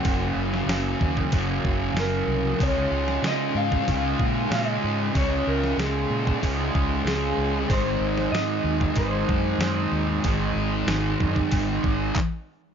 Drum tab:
HH |o---o---o---o---|o---o---o---o---|o---o---o---o---|o---o---o---o---|
CP |----------------|----------------|----------------|----------------|
SD |---oo-------o---|---oo-------o---|---oo-------o---|---oo-------o---|
BD |o-----ooo-o-----|o------oo-o-----|o------oo-o-----|o------oo-o-----|

HH |o---o---o-------|
CP |------------x---|
SD |----o-----------|
BD |o-----ooo-o-o---|